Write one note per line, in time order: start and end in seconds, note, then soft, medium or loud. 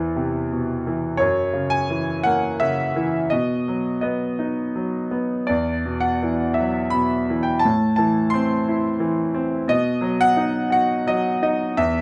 0.00 1.17 E2 soft
0.00 0.85 E3 soft
0.00 0.82 B3 soft
0.00 1.22 C5 soft
0.16 1.17 C3 soft
0.52 1.19 B2 soft
0.87 1.20 E3 soft
1.17 3.26 F#2 medium
1.17 1.73 C#5 medium
1.53 2.59 C#3 soft
1.70 2.25 G#5 medium
1.90 2.95 E3 soft
2.24 3.28 A#3 soft
2.24 2.60 F#5 medium
2.60 3.29 C#3 soft
2.60 3.33 E5 medium
2.96 3.30 E3 soft
3.30 5.45 B2 soft
3.30 4.00 D#5 medium
3.68 4.74 F#3 soft
4.01 5.10 B3 soft
4.01 5.07 D#5 soft
4.39 5.45 D#4 soft
4.76 5.47 F#3 soft
5.11 5.47 B3 soft
5.47 7.61 E2 soft
5.47 6.05 D5 medium
5.86 6.92 B2 soft
6.01 6.53 F#5 medium
6.23 7.28 E3 soft
6.54 6.93 E5 medium
6.60 7.62 F#3 soft
6.90 7.62 B2 soft
6.90 7.41 B5 medium
7.30 7.64 E3 soft
7.43 7.63 G5 medium
7.59 7.94 A5 medium
7.65 9.65 A2 soft
7.96 8.98 E3 soft
7.96 8.33 A5 medium
8.30 9.33 C4 soft
8.30 9.29 C6 medium
8.68 9.66 E4 soft
9.00 9.66 E3 soft
9.34 9.68 C4 soft
9.68 11.74 B2 medium
9.68 10.22 D#5 medium
10.01 11.05 F#3 soft
10.21 10.71 F#5 medium
10.37 11.41 D#4 soft
10.70 11.74 F#4 soft
10.70 11.09 F#5 medium
11.07 11.75 F#3 soft
11.07 11.41 D#5 medium
11.42 11.77 D#4 soft
11.42 11.79 D#5 medium
11.77 12.02 E2 medium
11.77 12.02 E5 medium